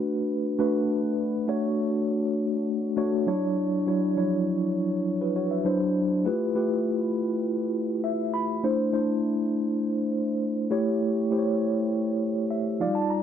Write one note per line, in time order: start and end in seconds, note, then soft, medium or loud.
0.00 0.59 A3 loud
0.00 0.59 D4 medium
0.00 0.59 F#4 medium
0.00 0.60 B4 loud
0.59 1.24 A3 loud
0.59 1.25 D4 medium
0.59 1.25 F#4 medium
0.59 1.25 B4 loud
1.48 2.35 A3 medium
1.48 2.36 D4 medium
1.48 2.36 F#4 medium
1.48 2.36 C#5 loud
2.97 3.27 A3 loud
2.97 3.26 D4 medium
2.97 3.27 F#4 medium
2.97 3.27 C#5 loud
3.27 3.75 F#3 medium
3.27 3.75 D4 medium
3.27 3.75 E4 medium
3.27 3.75 C#5 loud
3.87 4.09 F#3 medium
3.87 4.09 D4 medium
3.87 4.09 E4 medium
3.87 4.09 C#5 medium
4.17 4.23 F3 medium
4.17 5.04 D4 medium
4.17 5.04 E4 medium
4.17 5.04 C#5 medium
4.23 5.07 F#3 medium
5.21 5.35 F#4 medium
5.21 5.35 B4 medium
5.36 5.50 F#4 medium
5.36 5.50 C#5 medium
5.51 5.79 B4 soft
5.51 5.79 E5 medium
5.65 6.13 F#3 medium
5.65 6.13 D4 medium
5.65 6.13 E4 medium
5.65 6.13 C5 medium
6.25 6.47 A3 medium
6.25 6.47 E4 medium
6.25 6.47 F4 medium
6.25 6.47 G4 medium
6.25 6.47 B4 medium
6.55 7.42 A3 medium
6.55 7.42 E4 medium
6.55 7.42 F4 medium
6.55 7.43 G4 medium
6.55 7.43 B4 medium
8.04 8.32 E5 medium
8.34 8.61 B5 medium
8.63 8.85 A3 medium
8.63 8.85 D4 medium
8.63 8.86 E4 medium
8.63 8.86 C5 medium
8.93 9.80 A3 medium
8.93 9.80 D4 medium
8.93 9.81 E4 medium
8.93 9.81 C5 medium
10.70 11.19 A3 medium
10.70 11.19 E4 medium
10.70 11.19 G4 medium
10.70 11.19 C#5 loud
11.31 12.18 A3 medium
11.31 12.19 E4 medium
11.31 12.19 G4 medium
11.31 11.38 C5 medium
11.38 12.22 C#5 medium
12.51 12.78 E5 medium
12.80 12.87 F3 medium
12.80 13.23 D#4 medium
12.80 13.23 F4 medium
12.80 13.23 D5 medium
12.80 12.95 F5 medium
12.87 13.23 G3 medium
12.95 13.09 A5 medium
13.10 13.23 A#5 medium